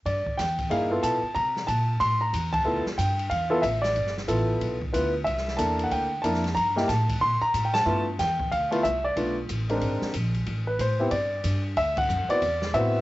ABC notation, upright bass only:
X:1
M:4/4
L:1/8
Q:"Swing" 1/4=184
K:C
V:1 name="Upright bass" clef=bass
G,, z E,,2 G,,2 B,, z | C,2 _B,,2 A,,2 E,,2 | D,, z G,,2 E,,2 A,,,2 | G,,,2 A,,,2 B,,,2 D,,2 |
C,,2 E,,2 D,,2 F,,2 | G,,2 A,,2 _B,, z A,,2 | G,,2 E,,2 D,,2 C,,2 | B,,,2 A,,,2 _A,,, z _B,,,2 |
A,,,2 A,,2 G,,2 G,,2 | D,,2 ^F,, z E,,2 A,,2 |]